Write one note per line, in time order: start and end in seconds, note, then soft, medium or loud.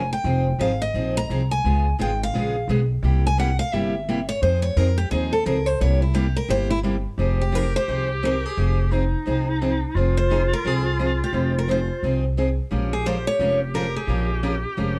0.00 0.11 F1 medium
0.13 0.57 G5 medium
0.24 0.52 F1 loud
0.24 0.46 F3 medium
0.24 0.46 C4 medium
0.24 0.46 D#4 medium
0.24 0.46 G#4 medium
0.58 0.89 G#1 medium
0.58 0.71 F3 medium
0.58 0.71 C4 medium
0.58 0.71 D#4 medium
0.58 0.71 G#4 medium
0.58 0.81 F5 medium
0.82 1.26 D#5 medium
0.94 1.24 A#1 medium
0.94 1.15 F3 medium
0.94 1.15 C4 medium
0.94 1.16 D#4 medium
0.94 1.16 G#4 medium
1.17 1.49 A#5 loud
1.29 1.59 C2 medium
1.29 1.41 F3 medium
1.29 1.41 C4 medium
1.29 1.41 D#4 medium
1.29 1.41 G#4 loud
1.51 1.96 G#5 medium
1.64 1.92 C#2 medium
1.64 1.85 C#3 medium
1.64 1.85 G#3 medium
1.64 1.86 B3 medium
1.64 1.86 F4 medium
1.64 1.86 G#4 medium
1.99 2.29 G#1 medium
1.99 2.10 C#3 medium
1.99 2.10 G#3 medium
1.99 2.10 B3 medium
1.99 2.10 F4 medium
1.99 2.10 G#4 medium
1.99 2.21 G5 medium
2.23 2.67 F5 medium
2.34 2.63 A#1 medium
2.34 2.55 C#3 medium
2.34 2.55 G#3 medium
2.34 2.55 B3 medium
2.34 2.55 F4 medium
2.34 2.55 G#4 medium
2.68 2.97 B1 medium
2.68 2.80 C#3 medium
2.68 2.80 G#3 medium
2.68 2.80 B3 medium
2.68 2.80 F4 medium
2.68 2.80 G#4 loud
3.03 3.58 C2 medium
3.03 3.24 C3 medium
3.03 3.24 G3 medium
3.03 3.24 A#3 medium
3.03 3.25 E4 medium
3.03 3.24 G4 medium
3.27 3.39 G#5 loud
3.38 3.49 C3 medium
3.38 3.49 G3 medium
3.38 3.49 A#3 medium
3.38 3.49 E4 medium
3.38 3.49 G4 loud
3.38 3.59 F#5 medium
3.59 3.73 F5 loud
3.73 4.28 G1 medium
3.73 3.93 C3 medium
3.73 3.93 G3 medium
3.73 3.94 A#3 medium
3.73 3.94 E4 medium
3.73 3.94 G4 medium
3.73 4.28 E5 medium
4.09 4.19 C3 medium
4.09 4.19 G3 medium
4.09 4.19 A#3 medium
4.09 4.19 E4 medium
4.09 4.19 G4 medium
4.29 4.42 C#5 loud
4.42 4.70 F2 medium
4.42 4.63 F3 medium
4.42 4.63 C4 medium
4.42 4.63 D#4 medium
4.42 4.63 G#4 medium
4.42 4.62 C5 medium
4.62 4.77 C#5 medium
4.76 5.06 F2 medium
4.76 4.88 F3 medium
4.76 4.88 C4 medium
4.76 4.88 D#4 loud
4.76 4.88 G#4 loud
4.76 4.97 A#4 medium
4.98 5.11 G4 loud
5.11 5.41 D#2 medium
5.11 5.32 F3 medium
5.11 5.32 C4 medium
5.11 5.32 D#4 medium
5.11 5.31 G#4 medium
5.11 5.32 G#4 medium
5.33 5.46 A4 medium
5.46 5.75 C#2 medium
5.46 5.57 F3 medium
5.46 5.57 C4 medium
5.46 5.57 D#4 medium
5.46 5.57 G#4 loud
5.46 5.66 A#4 medium
5.66 5.80 C5 loud
5.81 6.36 C2 loud
5.81 6.01 C3 medium
5.81 6.01 G3 medium
5.81 6.01 A#3 medium
5.81 6.02 E4 medium
5.81 6.02 G4 medium
5.81 6.01 C#5 medium
6.02 6.15 E4 soft
6.14 6.25 C3 loud
6.14 6.25 G3 medium
6.14 6.26 A#3 loud
6.14 6.26 E4 medium
6.14 6.35 G4 medium
6.14 6.26 G4 loud
6.36 6.49 A#4 loud
6.49 7.04 G1 medium
6.49 6.70 C3 medium
6.49 6.70 G3 medium
6.49 6.70 A#3 medium
6.49 6.70 E4 medium
6.49 6.70 G4 medium
6.49 6.70 C5 loud
6.70 6.79 E4 loud
6.83 6.95 C3 medium
6.83 6.95 G3 medium
6.83 6.95 A#3 medium
6.83 6.95 E4 medium
6.83 6.95 G4 medium
7.18 7.73 F1 medium
7.18 7.39 F3 medium
7.18 7.39 C4 medium
7.18 7.40 D#4 medium
7.18 8.93 G4 loud
7.18 7.40 G#4 medium
7.41 7.55 G4 medium
7.52 7.64 F3 medium
7.52 7.64 C4 medium
7.52 7.64 D#4 medium
7.52 7.64 G#4 medium
7.52 7.75 A#4 medium
7.76 8.07 C5 medium
7.88 8.43 C2 medium
7.88 8.08 F3 medium
7.88 8.09 C4 medium
7.88 8.09 D#4 medium
7.88 8.09 G#4 medium
8.23 8.33 F3 medium
8.23 8.34 C4 medium
8.23 8.34 D#4 medium
8.23 8.34 G#4 medium
8.23 8.46 A#4 medium
8.46 8.93 G#4 medium
8.57 9.13 F1 medium
8.57 8.78 F3 medium
8.57 8.78 C4 medium
8.57 8.78 D#4 medium
8.57 8.78 G#4 medium
8.91 9.02 F3 medium
8.91 9.03 C4 medium
8.91 9.97 D#4 medium
8.91 9.03 D#4 medium
8.91 9.03 G#4 medium
9.26 9.82 C2 medium
9.26 9.46 F3 medium
9.26 9.47 C4 medium
9.26 9.47 D#4 medium
9.26 9.47 G#4 medium
9.62 9.72 F3 medium
9.62 9.72 C4 medium
9.62 9.72 D#4 medium
9.62 9.72 G#4 medium
9.95 10.50 F1 medium
9.95 10.16 F3 medium
9.95 10.17 C4 medium
9.95 10.17 D#4 medium
9.95 12.29 F4 medium
9.95 10.17 G#4 medium
10.17 10.52 C5 loud
10.30 10.41 F3 medium
10.30 10.41 C4 medium
10.30 10.41 D#4 loud
10.30 10.42 G#4 medium
10.53 10.67 A#4 medium
10.65 11.20 C2 medium
10.65 10.85 F3 medium
10.65 10.85 C4 medium
10.65 10.85 D#4 medium
10.65 10.86 G#4 medium
10.65 11.23 G#4 medium
10.99 11.10 F3 medium
10.99 11.10 C4 medium
10.99 11.10 D#4 medium
10.99 11.10 G#4 medium
11.24 11.54 G4 medium
11.33 11.88 F1 medium
11.33 11.54 F3 medium
11.33 11.54 C4 medium
11.33 11.54 D#4 medium
11.33 11.54 G#4 medium
11.59 11.69 A#4 medium
11.68 11.79 F3 medium
11.68 11.79 C4 medium
11.68 11.79 D#4 medium
11.68 11.80 G#4 medium
11.68 12.02 C5 medium
12.03 12.58 C2 medium
12.03 12.23 F3 medium
12.03 12.24 C4 medium
12.03 12.23 D#4 medium
12.03 12.24 G#4 medium
12.37 12.48 F3 medium
12.37 12.48 C4 medium
12.37 12.48 D#4 medium
12.37 12.48 G#4 medium
12.71 13.26 A#1 medium
12.71 12.91 F3 medium
12.71 12.92 G#3 medium
12.71 12.92 C#4 medium
12.71 12.92 F4 medium
12.71 14.99 G4 medium
12.71 12.92 A#4 medium
12.93 13.05 G#4 medium
13.06 13.17 F3 medium
13.06 13.17 G#3 medium
13.06 13.17 C#4 medium
13.06 13.17 F4 medium
13.06 13.17 A#4 medium
13.06 13.25 C5 medium
13.27 13.59 C#5 loud
13.39 13.95 F1 medium
13.39 13.60 F3 medium
13.39 13.60 G#3 medium
13.39 13.61 C#4 medium
13.39 13.61 F4 medium
13.39 13.61 A#4 medium
13.74 13.85 F3 medium
13.74 13.85 G#3 medium
13.74 13.85 C#4 medium
13.74 13.86 F4 medium
13.74 13.94 A#4 medium
13.74 13.86 A#4 medium
13.96 14.41 G#4 medium
14.07 14.63 A#1 medium
14.07 14.29 F3 medium
14.07 14.29 G#3 medium
14.07 14.29 C#4 medium
14.07 14.29 F4 medium
14.07 14.30 A#4 medium
14.43 14.54 F3 medium
14.43 14.54 G#3 medium
14.43 14.54 C#4 medium
14.43 14.54 F4 medium
14.43 14.55 A#4 medium
14.77 14.99 F1 medium
14.77 14.98 F3 medium
14.77 14.98 G#3 medium
14.77 14.98 C#4 medium
14.77 14.98 F4 medium
14.77 14.98 A#4 medium